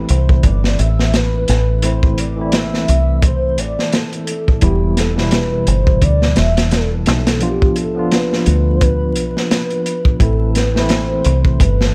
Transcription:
0.00 1.83 E3 medium
0.00 1.84 A3 medium
0.00 1.84 C4 medium
0.00 1.85 E4 loud
0.09 0.41 C2 medium
0.09 0.42 C5 loud
0.09 closed hi-hat medium
0.29 kick medium
0.43 0.75 G1 medium
0.43 0.76 D5 loud
0.43 kick loud
0.43 closed hi-hat medium
0.64 snare medium
0.79 1.46 A1 medium
0.79 1.16 E5 loud
0.79 closed hi-hat medium
0.99 snare soft
1.14 1.86 B4 loud
1.14 snare loud
1.14 closed hi-hat medium
1.48 2.86 A1 medium
1.48 snare soft
1.48 closed hi-hat medium
1.82 2.33 E3 medium
1.82 2.34 A3 medium
1.82 2.34 C4 medium
1.82 2.34 E4 medium
1.82 2.21 C5 loud
1.82 closed hi-hat medium
2.03 kick medium
2.18 2.54 D5 medium
2.18 closed hi-hat medium
2.36 4.58 E3 medium
2.36 4.59 A3 medium
2.36 4.59 C4 medium
2.41 4.60 E4 medium
2.52 3.19 E5 loud
2.52 snare loud
2.52 closed hi-hat medium
2.74 snare soft
2.88 3.58 C2 medium
2.88 closed hi-hat medium
3.22 3.61 C5 loud
3.22 kick loud
3.22 closed hi-hat medium
3.58 3.76 A1 medium
3.58 3.96 D5 medium
3.58 closed hi-hat medium
3.79 snare soft
3.92 4.63 A4 loud
3.92 snare loud
3.92 closed hi-hat medium
4.13 closed hi-hat soft
4.27 closed hi-hat medium
4.48 kick medium
4.61 5.64 E1 medium
4.61 5.12 E3 medium
4.61 5.13 G3 medium
4.61 5.13 B3 medium
4.61 5.13 E4 medium
4.61 5.00 G4 loud
4.61 kick loud
4.61 closed hi-hat medium
4.97 5.32 A4 medium
4.97 snare soft
4.97 closed hi-hat medium
5.15 7.38 B2 medium
5.15 7.37 E3 medium
5.15 7.38 G3 medium
5.15 snare soft
5.20 7.39 E4 medium
5.31 5.69 B4 loud
5.31 snare loud
5.31 closed hi-hat medium
5.67 5.99 G1 medium
5.67 6.05 C5 loud
5.67 closed hi-hat medium
5.87 kick medium
6.02 6.33 D2 medium
6.02 6.39 D5 loud
6.02 kick loud
6.02 closed hi-hat medium
6.22 snare soft
6.36 7.08 E1 medium
6.36 6.74 E5 loud
6.36 snare medium
6.36 closed hi-hat medium
6.57 snare loud
6.57 closed hi-hat medium
6.71 7.42 A4 loud
6.71 snare loud
6.71 closed hi-hat medium
7.06 8.44 B1 medium
7.06 snare medium
7.06 closed hi-hat medium
7.27 snare loud
7.27 closed hi-hat medium
7.40 7.91 F3 medium
7.40 7.92 B3 medium
7.40 7.92 D4 medium
7.40 7.92 F4 medium
7.40 7.75 G4 medium
7.40 closed hi-hat medium
7.62 kick medium
7.76 8.14 A4 medium
7.76 closed hi-hat medium
7.94 10.16 F3 medium
7.94 10.17 B3 medium
7.94 10.17 D4 medium
7.99 10.18 F4 medium
8.11 8.75 B4 loud
8.11 snare loud
8.11 closed hi-hat medium
8.33 snare soft
8.46 9.17 D2 medium
8.46 closed hi-hat medium
8.76 8.83 C5 medium
8.81 9.51 B4 loud
8.81 kick loud
8.81 closed hi-hat medium
9.16 9.34 B1 loud
9.16 closed hi-hat medium
9.37 snare soft
9.51 10.17 B4 loud
9.51 snare loud
9.51 closed hi-hat medium
9.70 closed hi-hat soft
9.86 closed hi-hat medium
10.05 kick medium
10.20 11.22 A1 medium
10.20 10.70 E3 medium
10.20 10.71 A3 medium
10.20 10.71 C4 medium
10.20 10.72 E4 medium
10.20 10.58 A4 medium
10.20 kick loud
10.20 closed hi-hat medium
10.55 10.91 B4 medium
10.55 snare soft
10.55 closed hi-hat medium
10.74 11.95 E3 medium
10.74 11.95 A3 medium
10.74 11.95 C4 medium
10.74 snare soft
10.78 11.95 E4 loud
10.89 11.63 C5 loud
10.89 snare loud
10.89 closed hi-hat medium
11.24 11.57 C2 medium
11.24 closed hi-hat medium
11.45 kick medium
11.60 11.92 G1 medium
11.60 11.95 B4 loud
11.60 kick loud
11.60 closed hi-hat medium
11.81 snare medium

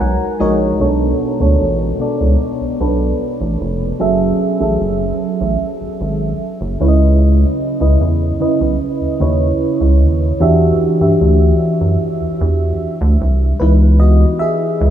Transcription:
0.00 0.17 B1 loud
0.00 0.40 G#3 medium
0.00 0.40 D#4 medium
0.00 0.40 F#4 medium
0.00 0.41 A#4 medium
0.00 0.41 C#5 medium
0.00 0.38 F#5 medium
0.00 0.82 G#5 medium
0.00 0.82 A#5 medium
0.40 0.73 A#1 loud
0.40 0.68 G#3 medium
0.40 0.69 D#4 medium
0.40 0.69 F#4 medium
0.40 0.69 A#4 medium
0.40 0.69 C#5 medium
0.40 0.78 D#5 medium
0.80 1.13 B1 loud
0.80 1.23 B2 loud
0.80 1.23 B3 medium
0.80 1.23 D4 medium
0.80 1.23 A4 medium
0.80 1.23 C#5 loud
1.40 1.57 D2 loud
1.40 1.83 B2 medium
1.40 1.83 B3 medium
1.40 1.83 D4 medium
1.40 1.83 A4 medium
1.40 1.83 C#5 medium
1.61 1.93 A1 medium
2.00 2.57 B2 medium
2.00 2.57 B3 medium
2.00 2.57 D4 medium
2.00 2.57 A4 medium
2.00 2.57 D5 medium
2.21 2.37 C#2 medium
2.61 2.69 B1 soft
2.80 3.13 B1 medium
2.80 3.65 B2 medium
2.80 3.65 B3 medium
2.80 3.65 D4 medium
2.80 3.65 A4 medium
2.80 3.66 B4 medium
3.41 3.57 A1 medium
3.61 3.93 F1 medium
4.00 4.33 F#1 loud
4.00 4.42 F#3 loud
4.00 4.43 C#4 medium
4.00 4.43 G#4 loud
4.00 4.43 A4 medium
4.00 4.43 E5 loud
4.60 4.77 A1 medium
4.60 5.73 F#3 medium
4.60 5.73 C#4 medium
4.60 5.73 G#4 medium
4.60 5.74 A4 medium
4.60 5.74 E5 medium
4.81 5.13 F#1 medium
5.41 5.57 A1 loud
5.81 5.89 G#1 soft
6.01 6.33 G#1 medium
6.61 6.77 F#1 loud
6.80 7.45 C#2 loud
6.80 7.60 C#3 medium
6.80 7.61 C#4 medium
6.80 7.61 E4 medium
6.80 7.61 B4 medium
6.80 6.88 C#5 medium
6.88 7.65 D#5 medium
7.80 7.97 C#2 medium
7.80 8.23 C#3 medium
7.80 8.23 C#4 medium
7.80 8.23 E4 medium
7.80 8.23 B4 medium
7.80 8.23 D#5 medium
8.01 8.33 E2 loud
8.40 8.97 C#3 medium
8.40 8.97 C#4 medium
8.40 8.97 E4 medium
8.40 8.97 B4 medium
8.40 8.98 D#5 medium
8.61 8.77 B1 medium
9.01 9.09 D#2 soft
9.20 9.53 D#2 loud
9.20 10.05 C#3 medium
9.20 10.05 C#4 medium
9.20 10.05 E4 medium
9.20 10.06 B4 medium
9.20 10.06 C#5 medium
9.81 10.02 C#2 medium
10.01 10.33 D#2 medium
10.40 10.73 E2 loud
10.40 10.83 E3 loud
10.40 10.83 D4 loud
10.40 10.83 F#4 medium
10.40 10.83 G4 medium
10.40 10.84 E5 loud
11.00 11.17 G2 medium
11.00 12.13 E3 medium
11.00 12.13 D4 medium
11.00 12.14 F#4 medium
11.00 12.14 G4 medium
11.00 12.14 E5 medium
11.21 11.53 D2 loud
11.81 11.97 F#2 medium
12.21 12.29 E2 soft
12.41 12.73 E2 loud
13.01 13.17 D2 loud
13.21 13.53 C2 medium
13.60 14.25 C#2 loud
13.60 14.14 E3 medium
13.60 14.14 B3 medium
13.60 14.14 D#4 medium
13.60 13.76 E4 medium
13.60 13.74 B4 medium
14.00 14.38 F#4 medium
14.00 14.41 D#5 medium
14.39 14.90 G#4 medium
14.39 14.90 E5 loud
14.81 14.90 C#2 loud

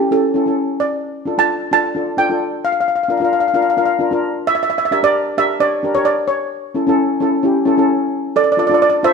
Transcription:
0.00 0.12 G4 medium
0.11 0.26 C#4 medium
0.11 0.26 E4 medium
0.11 0.26 G4 medium
0.11 0.54 A4 medium
0.34 0.42 C#4 medium
0.34 0.42 E4 medium
0.34 0.42 A4 medium
0.46 0.94 C#4 medium
0.46 0.95 E4 medium
0.46 0.95 A4 medium
0.80 1.40 D5 medium
1.25 1.33 D4 medium
1.25 1.33 F4 medium
1.25 1.34 A4 medium
1.38 1.58 D4 medium
1.38 1.59 F4 medium
1.38 1.59 A4 medium
1.38 1.72 A5 medium
1.71 1.86 D4 medium
1.71 1.86 F4 medium
1.71 1.87 A4 medium
1.71 2.15 A5 loud
1.95 2.09 D4 medium
1.95 2.10 F4 medium
1.95 2.10 A4 medium
2.17 2.25 D4 medium
2.17 2.25 F4 medium
2.17 2.26 A4 medium
2.17 2.65 G5 medium
2.30 2.78 D4 medium
2.30 2.78 F4 medium
2.30 2.79 A4 medium
2.65 2.71 F5 medium
2.72 2.79 F5 soft
2.81 2.86 F5 medium
2.88 2.94 F5 soft
2.96 3.02 F5 soft
3.03 3.09 F5 soft
3.08 3.16 D4 medium
3.08 3.16 F4 medium
3.08 3.17 A#4 medium
3.08 3.16 F5 soft
3.17 3.41 D4 medium
3.17 3.42 F4 medium
3.17 3.23 F5 soft
3.22 3.42 A#4 medium
3.22 3.31 F5 soft
3.33 3.39 F5 soft
3.40 3.47 F5 medium
3.48 3.53 F5 soft
3.54 3.69 D4 medium
3.54 3.69 F4 medium
3.54 3.69 A#4 medium
3.54 3.61 F5 medium
3.62 3.69 F5 soft
3.70 3.76 F5 medium
3.77 3.92 D4 medium
3.77 3.92 F4 medium
3.77 3.92 A#4 medium
3.77 3.84 F5 soft
3.86 3.92 F5 medium
3.99 4.07 D4 medium
3.99 4.07 F4 medium
3.99 4.08 A#4 medium
4.11 4.60 D4 medium
4.11 4.60 F4 medium
4.11 4.61 A#4 medium
4.47 4.54 E5 medium
4.55 4.62 E5 medium
4.63 4.69 E5 medium
4.70 4.77 E5 medium
4.78 4.84 E5 medium
4.85 4.91 E5 medium
4.91 4.99 D4 medium
4.91 4.99 G4 medium
4.91 5.00 A#4 medium
4.91 5.00 E5 medium
5.03 5.24 D4 medium
5.03 5.25 G4 medium
5.03 5.25 A#4 medium
5.03 5.35 D5 medium
5.38 5.52 D4 medium
5.38 5.53 G4 medium
5.38 5.53 A#4 medium
5.38 5.62 E5 loud
5.60 5.75 D4 medium
5.60 5.75 G4 medium
5.60 5.76 C#5 medium
5.60 5.97 D5 medium
5.83 5.91 D4 medium
5.83 5.91 G4 medium
5.83 5.92 A#4 medium
5.95 6.43 D4 medium
5.95 6.44 G4 medium
5.95 6.44 A#4 medium
5.95 6.06 C#5 medium
6.05 6.27 D5 medium
6.28 7.85 C#5 medium
6.75 6.82 C#4 medium
6.75 6.83 E4 medium
6.75 6.83 A4 medium
6.87 7.08 C#4 medium
6.87 7.08 E4 medium
6.87 7.09 A4 medium
7.20 7.35 C#4 medium
7.20 7.35 E4 medium
7.20 7.36 A4 medium
7.43 7.58 C#4 medium
7.43 7.58 E4 medium
7.43 7.59 G4 medium
7.65 7.73 C#4 medium
7.65 7.74 E4 medium
7.65 7.74 A4 medium
7.77 8.26 C#4 medium
7.77 8.26 E4 medium
7.77 8.27 A4 medium
8.36 8.43 A4 medium
8.36 8.43 D5 medium
8.44 8.51 D5 medium
8.52 8.58 D5 medium
8.57 8.65 D4 medium
8.57 8.65 F4 medium
8.57 8.66 A4 medium
8.57 8.66 D5 medium
8.67 8.90 D4 medium
8.67 8.91 F4 medium
8.67 8.73 D5 medium
8.71 8.91 A4 medium
8.71 8.81 D5 medium
8.82 8.89 D5 medium
8.90 8.97 D5 medium
9.03 9.13 D4 medium
9.03 9.13 F4 medium
9.03 9.13 A4 medium
9.03 9.13 C5 medium
9.03 9.13 E5 medium

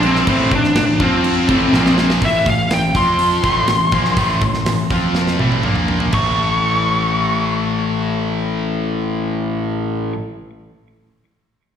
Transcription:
0.00 0.23 A#1 loud
0.00 0.26 A#2 medium
0.00 0.26 F3 loud
0.00 0.26 A#3 loud
0.00 crash medium
0.06 0.27 C4 medium
0.16 snare soft
0.26 0.50 A1 loud
0.26 0.50 A2 medium
0.26 0.51 E3 loud
0.26 0.51 A3 loud
0.26 kick loud
0.26 crash medium
0.30 0.51 C4 medium
0.51 0.74 A1 medium
0.51 0.71 A2 medium
0.51 0.71 E3 medium
0.51 kick medium
0.51 crash medium
0.55 1.03 D4 medium
0.64 snare soft
0.75 0.98 A1 medium
0.75 0.95 A2 medium
0.75 0.96 E3 medium
0.75 snare loud
0.75 crash medium
1.00 1.45 F2 loud
1.00 1.48 F3 loud
1.00 1.48 C4 medium
1.00 1.95 C4 medium
1.00 1.49 F4 loud
1.00 kick loud
1.00 crash medium
1.24 crash medium
1.48 1.71 A1 medium
1.48 1.73 A2 medium
1.48 1.73 E3 loud
1.48 1.73 A3 medium
1.48 kick loud
1.48 crash medium
1.73 2.18 A#1 medium
1.73 2.22 A#2 loud
1.73 2.22 F3 loud
1.73 2.22 A#3 loud
1.73 snare medium
1.86 snare medium
1.98 snare medium
2.10 snare loud
2.22 2.44 A1 medium
2.22 2.45 A2 loud
2.22 2.46 E3 loud
2.22 2.47 A3 loud
2.22 2.49 E5 medium
2.22 kick loud
2.22 open hi-hat medium
2.46 2.69 A1 medium
2.46 2.66 A2 medium
2.46 2.67 E3 medium
2.46 2.73 F5 medium
2.46 kick medium
2.46 open hi-hat medium
2.70 2.93 A1 medium
2.70 2.90 A2 medium
2.70 2.90 E3 medium
2.70 2.97 G5 medium
2.70 snare loud
2.70 open hi-hat medium
2.95 3.40 F2 loud
2.95 3.43 F3 medium
2.95 3.44 C4 loud
2.95 3.44 F4 loud
2.95 5.61 C6 medium
2.95 kick medium
2.95 open hi-hat medium
3.19 open hi-hat medium
3.43 3.66 A1 medium
3.43 3.68 A2 medium
3.43 3.68 E3 medium
3.43 3.68 A3 loud
3.43 kick loud
3.43 open hi-hat medium
3.68 3.91 A1 medium
3.68 3.88 A2 medium
3.68 3.89 E3 medium
3.68 snare loud
3.68 open hi-hat medium
3.92 4.15 A#1 loud
3.92 4.17 A#2 medium
3.92 4.17 F3 medium
3.92 4.17 A#3 medium
3.92 kick loud
3.92 open hi-hat soft
4.05 snare soft
4.17 4.40 A1 medium
4.17 4.41 A2 medium
4.17 4.41 E3 loud
4.17 4.42 A3 loud
4.17 kick loud
4.17 open hi-hat medium
4.41 4.64 A1 medium
4.41 4.62 A2 medium
4.41 4.62 E3 medium
4.41 kick medium
4.41 open hi-hat soft
4.54 snare soft
4.66 4.89 A1 medium
4.66 4.87 A2 medium
4.66 4.87 E3 medium
4.66 snare loud
4.66 open hi-hat medium
4.90 5.36 F2 medium
4.90 5.39 F3 medium
4.90 5.39 C4 loud
4.90 5.40 F4 loud
4.90 kick medium
4.90 open hi-hat soft
5.15 snare medium
5.27 snare medium
5.39 5.62 A1 medium
5.39 5.64 A2 medium
5.39 5.65 E3 medium
5.39 5.66 A3 medium
5.39 high tom medium
5.52 high tom medium
5.63 6.09 A#1 loud
5.63 6.12 A#2 medium
5.63 6.13 F3 medium
5.63 6.13 A#3 medium
5.63 mid tom medium
5.76 mid tom medium
5.88 floor tom medium
6.00 floor tom medium
6.12 10.11 A1 medium
6.12 10.15 A2 medium
6.12 10.17 E3 medium
6.12 10.13 C#6 medium
6.12 kick loud
6.12 crash medium
6.16 10.19 A3 medium

